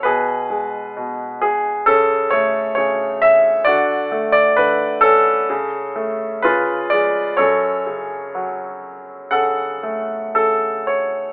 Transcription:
<<
  \new Staff \with { instrumentName = "Grand piano" } { \time 4/4 \key fis \minor \tempo 4 = 64 << { b'4. gis'8 a'8 cis''8 cis''8 e''8 | d''8. d''16 b'8 a'4. b'8 d''8 | cis''2 fis''4 a'8 cis''8 | } \\ { gis'2 cis'2 | fis'4. cis'4. eis'4 | a'2 a'2 | } >> }
  \new Staff \with { instrumentName = "Grand piano" } { \clef bass \time 4/4 \key fis \minor b,8 gis8 b,4 cis8 a8 cis4 | d8 a8 d4 cis8 a8 cis8 gis8 | fis,8 cis8 fis4 cis8 a8 cis4 | }
>>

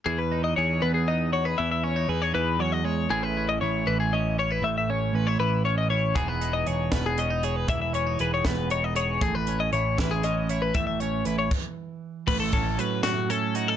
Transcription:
<<
  \new Staff \with { instrumentName = "Clean electric guitar" } { \time 6/8 \key a \lydian \tempo 4. = 78 gis'16 b'8 dis''16 cis''8 b'16 gis'16 dis''8 cis''16 b'16 | e''16 e''16 cis''8 b'16 cis''16 b'8 cis''16 dis''16 cis''8 | gis'16 b'8 dis''16 cis''8 b'16 gis'16 dis''8 cis''16 b'16 | e''16 e''16 cis''8 b'16 cis''16 b'8 cis''16 dis''16 cis''8 |
gis'16 b'8 dis''16 cis''8 b'16 gis'16 dis''8 cis''16 b'16 | e''16 e''16 cis''8 b'16 cis''16 b'8 cis''16 dis''16 cis''8 | gis'16 b'8 dis''16 cis''8 b'16 gis'16 dis''8 cis''16 b'16 | e''16 e''16 cis''8 b'16 cis''16 r4. |
b'16 a'16 a'8 b'8 fis'8 a'8 fis'16 a'16 | }
  \new Staff \with { instrumentName = "Clean electric guitar" } { \time 6/8 \key a \lydian << { r8 dis'8 gis'4 dis'8 fis'16 gis'16 | r8 cis'16 dis'16 gis'2 | <e cis' e' gis'>8 cis'8 e'4 cis'8 cis'16 e'16 | r8 cis'8 cis'16 e'8. cis'8 e'8 |
<b dis' gis'>8 dis'8 gis'4 cis'16 dis'16 gis'8 | r8 cis'16 dis'16 gis'4 dis'8 gis'8 | r8 cis'8 e'4 cis'8 e'8 | r8 cis'8 e'8 r4. |
r8 cis'4. cis'8 dis'8 | } \\ { e4. b4. | e4. e8 fis8 gis8 | a,4. e4. | a,4. e4. |
e4. b4. | e4. b4. | a,4. e4. | a,4. r4. |
a,4 fis8 a,4. | } >> }
  \new Staff \with { instrumentName = "Picked electric bass" } { \clef bass \time 6/8 \key a \lydian e,4 e,8 e,4. | e,4 e,8 e,4. | a,,4 a,,8 a,,4. | a,,4 a,,8 a,,4. |
e,,4 e,,8 e,,4. | e,,4 e,,8 e,,4. | a,,4 a,,8 a,,4. | a,,4 a,,8 r4. |
a,,8 a,,8 r2 | }
  \new DrumStaff \with { instrumentName = "Drums" } \drummode { \time 6/8 r4. r4. | r4. r4. | r4. r4. | r4. r4. |
<hh bd>8 hh8 hh8 <hh bd sn>8 hh8 hh8 | <hh bd>8 hh8 hh8 <hh bd sn>8 hh8 hh8 | <hh bd>8 hh8 hh8 <hh bd sn>8 hh8 hh8 | <hh bd>8 hh8 hh8 <cymc bd>4. |
<cymc bd>8 <hh bd>8 hh8 <hh sn>8 hh8 hh8 | }
>>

